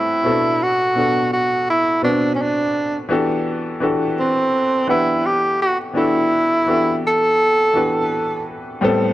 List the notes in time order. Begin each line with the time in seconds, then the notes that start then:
Already playing: A2 G3 A3 B3 C4 E4 G4 A4 B4
0.23 B2 B3 C4 F#4 A4
0.31 D4
0.63 F#4
0.95 B2 B3 D4 F#4 A4
1.33 F#4
1.70 E4
2.02 B2 B3 C4 D4 F#4 B4
2.09 D4
2.35 C#4
2.42 D4
3.09 E3 B3 D4 F#4 G4 A4
3.80 E3 D4 F#4 G4 A4 B4
4.20 C4
4.87 E3 B3 D4 E4 G4 B4 F#5
5.26 G4
5.62 F#4
5.93 E3 B3 D4 E4 F#4 G4
5.97 A4
6.66 E3 B3 D4 F#4 G4 A4
7.07 A4
7.73 E3 B3 D4 F#4 G4 B4
8.81 A2 G3 B3 C4 A4